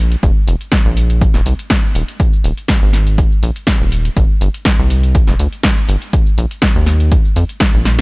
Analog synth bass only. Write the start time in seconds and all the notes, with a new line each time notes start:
Already playing: A#1
0.23 F1
0.48 F1
0.85 A#1
1.35 D#1
1.46 C2
1.95 D#1
2.44 D#1
2.82 G#1
3.43 A#1
3.81 D#1
4.17 G1
4.41 G1
4.79 C2
5.28 F1
5.40 D2
5.89 G1
6.38 A#1
6.76 D#2
7.36 F2
7.74 A#1